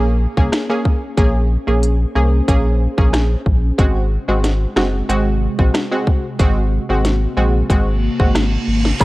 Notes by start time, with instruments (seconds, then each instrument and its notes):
Already playing: sub bass A#1, ambient pad A#3 C#4 G#4
0.37 sub bass C2, synth pluck A#3 C#4 G#4, kick
0.52 cross-stick, snare, closed hi-hat
0.69 synth pluck A#3 C#4 G#4
0.85 kick
1.17 sub bass A#1, synth pluck A#3 C#4 G#4, ambient pad C5, kick, closed hi-hat
1.67 sub bass A#1, synth pluck A#3 C#4 G#4
1.83 closed hi-hat
2.15 sub bass C2, synth pluck A#3 C#4 G#4
2.48 sub bass A#1, synth pluck A#3 C#4 G#4, kick, closed hi-hat
2.98 sub bass A#1, synth pluck A#3 C#4 G#4, kick
3.13 cross-stick, snare, closed hi-hat
3.46 sub bass A#1, kick
3.78 sub bass G#1, ambient pad C3 G#3 F#4, synth pluck G#3 C4 F#4, kick, closed hi-hat
4.28 sub bass G#1, synth pluck G#3 C4 F#4
4.44 snare, closed hi-hat
4.76 sub bass F#1, synth pluck G#3 C4 F#4, cross-stick, snare
5.09 sub bass G#1, synth pluck G#3 C4 F#4, closed hi-hat
5.59 sub bass A#1, synth pluck G#3 C4 F#4, kick
5.74 cross-stick, snare, closed hi-hat
5.91 synth pluck G#3 C4 F#4
6.07 kick
6.39 sub bass G#1, synth pluck G#3 C4 F#4, ambient pad A#3, kick, closed hi-hat
6.89 sub bass G#1, synth pluck G#3 C4 F#4
7.05 snare, closed hi-hat
7.37 sub bass A#1, synth pluck G#3 C4 F#4
7.70 sub bass G#1, synth pluck G#3 C4 F#4, kick, closed hi-hat, reverse cymbal
8.20 sub bass G#1, synth pluck G#3 C4 F#4, kick
8.35 cross-stick, snare, closed hi-hat
8.68 sub bass G#1
8.85 snare
9.00 sub bass A#1, ambient pad C#3 A#3, synth pluck A#3 C#4 G#4, soft synth lead G#4, kick, closed hi-hat, crash, high woodblock